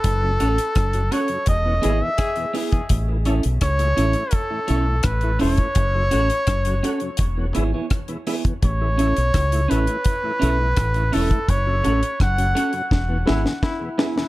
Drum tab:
HH |x-xxxxxxx-x-xxox|x-xxxxxxx-x-xxox|x-xxxxxxx-x-xxox|x-xxxxxxx-x-xxox|
SD |----r-------r---|----r-------r---|----r-------r---|----r-------r---|
BD |o---o---o---o--o|o---o---o---o--o|o---o---o---o--o|o---o---o---o--o|

HH |x-xxxxxx--------|
SD |----r---o-ooo-oo|
BD |o---o---o---o---|